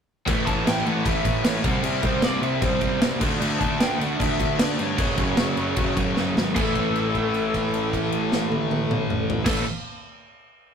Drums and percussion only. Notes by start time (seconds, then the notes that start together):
0.28 kick, crash
0.47 kick, crash
0.67 snare, crash
0.86 crash
1.06 kick, crash
1.25 kick, crash
1.45 snare, crash
1.64 kick, crash
1.83 crash
2.03 kick, crash
2.22 snare, crash
2.43 crash
2.62 kick, crash
2.81 kick, crash
3.02 snare, crash
3.21 kick, crash
3.42 crash
3.61 kick, crash
3.80 snare, crash
4.01 crash
4.20 kick, crash
4.40 kick, crash
4.59 snare, crash
4.79 crash
4.98 kick, crash
5.17 kick, crash
5.37 snare, crash
5.57 crash
5.76 kick, crash
5.97 kick, crash
6.16 snare
6.37 snare
6.56 kick, crash
6.75 kick, crash
6.96 crash
7.15 kick, crash
7.34 crash
7.54 kick, crash
7.74 crash
7.93 kick, crash
8.12 crash
8.32 snare
8.52 high tom
8.71 high tom
8.91 mid tom
9.10 mid tom
9.30 floor tom
9.46 kick, snare, crash